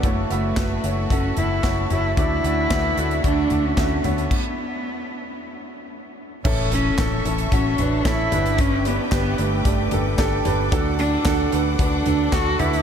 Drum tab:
CC |----------------|----------------|x---------------|x---------------|
HH |x-x-x-x-x-x-x-x-|x-x-x-xxx-x-x-xx|----------------|--x-x-xxx-x-x-xx|
CP |----x-------x---|----x-------x---|----------------|----x-------x---|
SD |----o-------o---|----o-------o---|----------------|----o-------o---|
FT |----------o---o-|----------o---o-|----------------|----------o---o-|
BD |o---o---o---o---|o---o---o---o---|o---------------|o---o---o---o---|

CC |----------------|----------------|
HH |x-x-x-x-x-x-x-x-|x-x-x-x-x-x-x-xx|
CP |----x-------x---|----x-------x---|
SD |----o-------o---|----o-------o---|
FT |----------o---o-|----------o---o-|
BD |o---o---o---o---|o---o---o---o---|